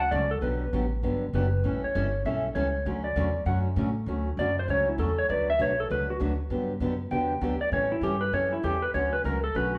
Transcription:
Already playing: upright bass D2
0.00 electric slide guitar F#5
0.11 upright bass C#2, steel-string acoustic guitar D3 F#3 A3 C#4 F#4, electric slide guitar D5
0.31 electric slide guitar A4
0.41 upright bass B1, steel-string acoustic guitar D3 F#3 B3 D4 G4, electric slide guitar B4
0.73 upright bass A1, steel-string acoustic guitar D3 F#3 B3 D4 G4
1.03 upright bass G1, steel-string acoustic guitar D3 F#3 B3 D4 G4
1.34 upright bass F#1, steel-string acoustic guitar D3 F#3 B3 D4 G4, electric slide guitar B4
1.64 upright bass A1, steel-string acoustic guitar E3 G3 C#4 E4 A4
1.83 electric slide guitar C#5, muted upright bass stroke
1.95 upright bass G1, steel-string acoustic guitar E3 G3 C#4 E4 A4
2.25 upright bass B1, steel-string acoustic guitar E3 G3 C#4 E4 A4, electric slide guitar E5
2.55 upright bass C#2, steel-string acoustic guitar E3 G3 C#4 E4 A4, electric slide guitar C#5
2.85 upright bass D2, steel-string acoustic guitar D3 F#3 A3 C#4 F#4
3.04 electric slide guitar D5
3.16 upright bass E2, steel-string acoustic guitar D3 F#3 A3 C#4 F#4
3.46 upright bass F#2, steel-string acoustic guitar D3 F#3 A3 C#4 F#4, electric slide guitar F#5
3.76 upright bass A2, steel-string acoustic guitar D3 F#3 A3 C#4 F#4
4.06 upright bass D2, steel-string acoustic guitar D3 F#3 A3 C#4 F#4
4.37 upright bass F#2, steel-string acoustic guitar D3 F#3 A3 C#4 F#4, electric slide guitar D5
4.59 electric slide guitar C5
4.68 upright bass C#2, steel-string acoustic guitar D3 F#3 A3 C#4 F#4, electric slide guitar C#5
4.89 electric slide guitar E4
4.98 upright bass E2, steel-string acoustic guitar D3 F#3 A3 C#4 F#4, electric slide guitar A4
5.18 electric slide guitar C#5
5.28 upright bass D2, steel-string acoustic guitar D3 F#3 A3 D4 F#4 B4, electric slide guitar D5
5.50 electric slide guitar E5
5.59 upright bass B1, steel-string acoustic guitar D3 F#3 A3 D4 F#4 B4, electric slide guitar C#5
5.80 electric slide guitar A4
5.90 upright bass C#2, steel-string acoustic guitar D3 F#3 A3 D4 F#4 B4, electric slide guitar B4
6.10 electric slide guitar F#4
6.20 upright bass D2, steel-string acoustic guitar D3 F#3 A3 D4 F#4 B4
6.50 upright bass G2, steel-string acoustic guitar D3 F#3 B3 D4 G4
6.80 upright bass F#2, steel-string acoustic guitar D3 F#3 B3 D4 G4
7.11 upright bass E2, steel-string acoustic guitar D3 F#3 B3 D4 G4, electric slide guitar G5
7.41 upright bass D2, steel-string acoustic guitar D3 F#3 B3 D4 G4
7.61 electric slide guitar D5
7.72 upright bass A2, steel-string acoustic guitar E3 G3 C#4 E4 A4, electric slide guitar C#5
7.92 electric slide guitar E4
8.01 upright bass G2, steel-string acoustic guitar E3 G3 C#4 E4 A4, electric slide guitar G4
8.21 electric slide guitar B4
8.32 upright bass F#2, steel-string acoustic guitar E3 G3 C#4 E4 A4, electric slide guitar C#5
8.53 electric slide guitar E4
8.63 upright bass E2, steel-string acoustic guitar E3 G3 C#4 E4 A4, electric slide guitar G4
8.82 electric slide guitar B4
8.94 upright bass D2, steel-string acoustic guitar D3 F#3 A3 C#4 F#4, electric slide guitar C#5
9.13 electric slide guitar B4
9.24 upright bass C#2, steel-string acoustic guitar D3 F#3 A3 C#4 F#4, electric slide guitar A#4
9.44 electric slide guitar A4
9.55 upright bass B1, steel-string acoustic guitar D3 F#3 A3 C#4 F#4, electric slide guitar B4
9.75 electric slide guitar F#4

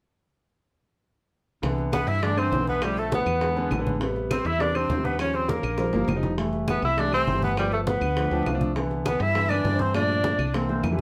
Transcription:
1.62 fretless electric bass C2, grand piano D3 E3 B3, high bongo, high conga
1.78 high bongo, high conga
1.92 tenor saxophone B3, flute B4, high bongo, high conga, claves
2.07 fretless electric bass G2, tenor saxophone E4, flute E5, high bongo, high conga
2.21 grand piano D3 E3 A3, tenor saxophone D4, flute D5, high bongo, high conga
2.36 grand piano D3 E3 D4, tenor saxophone C4, flute C5, high bongo, high conga, claves
2.52 fretless electric bass B1, high bongo, low bongo, high conga
2.59 grand piano D3 E3 B3
2.67 tenor saxophone B3, flute B4, high conga
2.81 grand piano D3 F3 A3, tenor saxophone G3, flute G4, high bongo, high conga, claves
2.97 tenor saxophone A3, flute A4, high bongo, high conga
3.12 tenor saxophone B3, flute B4, high bongo, high conga
3.26 fretless electric bass E2, high bongo, high conga, claves
3.40 grand piano D3 G#3 B3, high bongo, high conga
3.55 grand piano D3 G#3 B3, high bongo, high conga
3.71 fretless electric bass A1, high bongo, low bongo, high conga, claves
3.77 grand piano D3 G#3 B3
3.87 high conga
3.99 grand piano C3 G3 B3, high bongo, high conga
4.16 high bongo, high conga
4.31 tenor saxophone C4, flute C5, high bongo, high conga, claves
4.45 fretless electric bass E2, tenor saxophone E4, flute E5, high bongo, high conga
4.59 grand piano C3 G3 B3, tenor saxophone D4, flute D5, high bongo, high conga
4.74 grand piano C3 G3 D4, tenor saxophone C4, flute C5, high bongo, high conga, claves
4.89 fretless electric bass D#2, high bongo, low bongo, high conga
4.97 grand piano C3 G3 D4
5.05 tenor saxophone B3, flute B4, high conga
5.18 grand piano F3 G3 C#4, tenor saxophone C#4, flute C#5, high bongo, high conga, claves
5.34 tenor saxophone C4, flute C5, high bongo, high conga
5.49 tenor saxophone A#3, flute A#4, high bongo, high conga
5.63 fretless electric bass A#1, high bongo, high conga, claves
5.78 grand piano F3 G3 C4, high bongo, high conga
5.92 fretless electric bass G1, grand piano F3 G3 A#3, low bongo, high conga
6.08 fretless electric bass F1, low bongo, high conga, claves
6.15 grand piano F3 G3 D#4
6.23 low bongo, high conga
6.37 grand piano E3 G3 A3, high bongo, high conga
6.53 high bongo, high conga
6.68 tenor saxophone B3, flute B4, high bongo, high conga, claves
6.82 fretless electric bass C2, tenor saxophone E4, flute E5, high bongo, high conga
6.96 grand piano E3 G3 A3, tenor saxophone D4, flute D5, high bongo, high conga
7.11 grand piano E3 G3 A3, tenor saxophone C4, flute C5, high bongo, high conga, claves
7.27 fretless electric bass G1, high bongo, low bongo, high conga
7.34 grand piano E3 G3 A3
7.42 tenor saxophone B3, flute B4, high conga
7.56 grand piano F3 A3 B3, tenor saxophone G3, flute G4, high bongo, high conga, claves
7.71 tenor saxophone A3, flute A4, high bongo, high conga
7.87 tenor saxophone B3, flute B4, high bongo, high conga
8.01 fretless electric bass D2, high bongo, high conga, claves
8.16 grand piano F3 A3 D4, high bongo, high conga
8.31 fretless electric bass D2, grand piano F3 A3 D4 G5, high bongo, high conga
8.46 fretless electric bass C2, grand piano F5, high bongo, low bongo, high conga, claves
8.53 grand piano F3 A3 D4
8.61 grand piano E5, high conga
8.75 grand piano D3 E3 B3, high bongo, high conga
8.91 high bongo, high conga
9.05 tenor saxophone B3, flute B4, high bongo, high conga, claves
9.20 fretless electric bass G2, tenor saxophone E4, flute E5, high bongo, high conga
9.35 grand piano D3 E3 B3, high bongo, high conga
9.49 grand piano D3 E3 B3, tenor saxophone D4, flute D5, high bongo, high conga, claves
9.64 fretless electric bass G2, high bongo, low bongo, high conga
9.72 grand piano D3 E3 C4
9.79 tenor saxophone C4, flute C5, high conga
9.94 grand piano A#2 F3 A3, tenor saxophone D4, flute D5, high bongo, high conga, claves
10.09 high bongo, high conga
10.24 high bongo, high conga
10.39 fretless electric bass C2, high bongo, high conga, claves
10.54 grand piano D3 E3 A#3, tenor saxophone C4, flute C5, high bongo, high conga
10.68 grand piano D3 E3 A#3, high bongo, high conga
10.83 fretless electric bass F2, high bongo, low bongo, high conga, claves
10.91 grand piano D3 E3 G3

